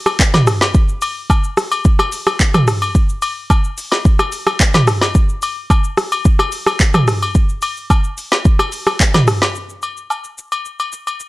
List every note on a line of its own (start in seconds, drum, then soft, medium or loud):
0.06 cross-stick loud
0.06 high agogo medium
0.06 shaker medium
0.19 kick medium
0.19 clap loud
0.19 shaker medium
0.34 snare medium
0.34 mid tom medium
0.34 high agogo medium
0.34 shaker medium
0.47 cross-stick loud
0.47 open hi-hat medium
0.47 shaker loud
0.61 snare medium
0.61 high agogo medium
0.61 shaker medium
0.74 kick loud
0.74 shaker medium
0.89 shaker medium
1.02 open hi-hat soft
1.02 high agogo medium
1.02 shaker medium
1.30 kick medium
1.30 high agogo medium
1.30 low woodblock medium
1.30 shaker medium
1.44 shaker medium
1.57 cross-stick loud
1.57 open hi-hat medium
1.57 shaker medium
1.72 high agogo medium
1.72 shaker medium
1.85 kick loud
1.85 shaker medium
1.99 cross-stick medium
1.99 high agogo medium
1.99 shaker medium
2.12 open hi-hat medium
2.12 shaker loud
2.27 cross-stick loud
2.27 high agogo medium
2.27 shaker medium
2.40 kick medium
2.40 clap loud
2.40 shaker medium
2.54 cross-stick medium
2.54 mid tom loud
2.54 high agogo medium
2.54 shaker medium
2.68 cross-stick loud
2.68 open hi-hat medium
2.68 shaker loud
2.82 high agogo medium
2.82 shaker medium
2.95 kick loud
2.95 shaker medium
3.09 shaker medium
3.22 open hi-hat soft
3.22 high agogo medium
3.22 shaker medium
3.50 kick medium
3.50 high agogo medium
3.50 low woodblock medium
3.50 shaker medium
3.64 shaker medium
3.78 open hi-hat soft
3.78 shaker medium
3.92 snare medium
3.92 high agogo medium
3.92 shaker medium
4.05 kick loud
4.05 shaker medium
4.19 cross-stick medium
4.19 high agogo medium
4.19 shaker medium
4.32 open hi-hat medium
4.32 shaker loud
4.47 cross-stick loud
4.47 high agogo medium
4.47 shaker medium
4.60 kick medium
4.60 clap loud
4.60 shaker medium
4.74 snare medium
4.74 mid tom medium
4.74 high agogo medium
4.74 shaker medium
4.87 cross-stick loud
4.87 open hi-hat medium
4.87 shaker loud
5.02 snare medium
5.02 high agogo medium
5.02 shaker medium
5.15 kick loud
5.15 shaker medium
5.29 shaker medium
5.42 open hi-hat soft
5.42 high agogo medium
5.42 shaker medium
5.70 kick medium
5.70 high agogo medium
5.70 low woodblock medium
5.70 shaker medium
5.84 shaker medium
5.97 cross-stick loud
5.97 open hi-hat medium
5.97 shaker medium
6.12 high agogo medium
6.12 shaker medium
6.25 kick loud
6.25 shaker medium
6.39 cross-stick medium
6.39 high agogo medium
6.39 shaker medium
6.52 open hi-hat medium
6.52 shaker loud
6.67 cross-stick loud
6.67 high agogo medium
6.67 shaker medium
6.80 kick medium
6.80 clap loud
6.80 shaker medium
6.94 cross-stick loud
6.94 mid tom medium
6.94 high agogo medium
6.94 shaker medium
7.08 cross-stick loud
7.08 open hi-hat medium
7.08 shaker medium
7.23 high agogo medium
7.23 shaker medium
7.35 kick loud
7.35 shaker medium
7.49 shaker medium
7.62 open hi-hat medium
7.62 high agogo medium
7.62 shaker medium
7.77 shaker medium
7.90 kick loud
7.90 high agogo medium
7.90 low woodblock medium
7.90 shaker medium
8.04 shaker medium
8.18 open hi-hat soft
8.18 shaker medium
8.32 snare medium
8.32 high agogo medium
8.32 shaker medium
8.45 kick loud
8.45 shaker medium
8.59 cross-stick medium
8.59 high agogo medium
8.59 shaker medium
8.72 open hi-hat medium
8.72 shaker loud
8.87 cross-stick loud
8.87 high agogo medium
8.87 shaker medium
9.00 kick medium
9.00 clap loud
9.00 shaker medium
9.14 snare medium
9.14 mid tom medium
9.14 high agogo medium
9.14 shaker medium
9.27 cross-stick loud
9.27 open hi-hat medium
9.27 shaker loud
9.42 snare medium
9.42 high agogo medium
9.42 shaker medium
9.55 shaker medium
9.70 shaker medium
9.82 high agogo medium
9.82 shaker medium
9.97 shaker soft
10.10 high agogo medium
10.10 low woodblock medium
10.10 shaker medium
10.24 shaker medium
10.38 shaker medium
10.52 high agogo medium
10.52 shaker medium
10.65 shaker medium
10.79 high agogo medium
10.79 shaker soft
10.92 shaker loud
11.07 high agogo medium
11.07 shaker medium
11.20 shaker medium